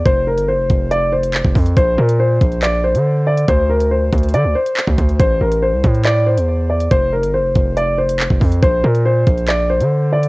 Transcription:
<<
  \new Staff \with { instrumentName = "Grand piano" } { \time 4/4 \key bes \lydian \tempo 4 = 140 c''8 bes'8 c''4 d''8 c''4. | c''8 bes'8 c''4 d''8 c''4 d''8 | c''8 bes'8 c''4 d''8 c''4. | c''8 bes'8 c''4 d''8 c''4 d''8 |
c''8 bes'8 c''4 d''8 c''4. | c''8 bes'8 c''4 d''8 c''4 d''8 | }
  \new Staff \with { instrumentName = "808-style bass" } { \clef bass \time 4/4 \key bes \lydian f,,8. g,,16. f,,16. f,,4.~ f,,16 f,,16 f,8 | bes,,8 bes,4 bes,,4~ bes,,16 d4~ d16 | d,4. d,8 d16 d,16 r8. d,16 d,8 | a,,8 a,,8. c,16 a,4~ a,16 e,4~ e,16 |
f,,8. g,,16. f,,16. f,,4.~ f,,16 f,,16 f,8 | bes,,8 bes,4 bes,,4~ bes,,16 d4~ d16 | }
  \new DrumStaff \with { instrumentName = "Drums" } \drummode { \time 4/4 <hh bd>8. hh16 r8 <hh bd>8 hh8. hh16 hc16 bd16 <hho bd>16 hh16 | <hh bd>8. hh16 r8 <hh bd>16 hh16 <hc hh>8. hh16 r8. hh16 | <hh bd>8. hh16 r8 <hh bd>32 hh32 hh32 hh32 hh8. hh16 hc16 bd16 <hh bd>16 hh16 | <hh bd>8. hh16 r8 <hh bd>16 hh16 <hc hh>8. hh16 r8. hh16 |
<hh bd>8. hh16 r8 <hh bd>8 hh8. hh16 hc16 bd16 <hho bd>16 hh16 | <hh bd>8. hh16 r8 <hh bd>16 hh16 <hc hh>8. hh16 r8. hh16 | }
>>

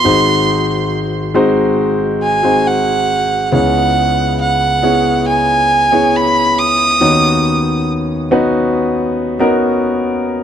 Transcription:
<<
  \new Staff \with { instrumentName = "Violin" } { \time 4/4 \key b \major \tempo 4 = 69 c'''4 r4. gis''8 fis''4 | fis''4 fis''4 gis''4 b''8 dis'''8~ | dis'''4 r2. | }
  \new Staff \with { instrumentName = "Grand piano" } { \time 4/4 \key b \major <gis bis dis' fis' bis'>4. <gis bis dis' fis' bis'>4~ <gis bis dis' fis' bis'>16 <gis bis dis' fis' bis'>4~ <gis bis dis' fis' bis'>16 | <b cis' e' gis' cis''>4. <b cis' e' gis' cis''>4~ <b cis' e' gis' cis''>16 <b cis' e' gis' cis''>4~ <b cis' e' gis' cis''>16 | <b cis' dis' fis' cis''>4. <b cis' dis' fis' b'>4~ <b cis' dis' fis' b'>16 <b cis' dis' fis' ais'>4~ <b cis' dis' fis' ais'>16 | }
  \new Staff \with { instrumentName = "Grand piano" } { \clef bass \time 4/4 \key b \major <gis,, gis,>1 | <cis, cis>1 | <dis, dis>1 | }
>>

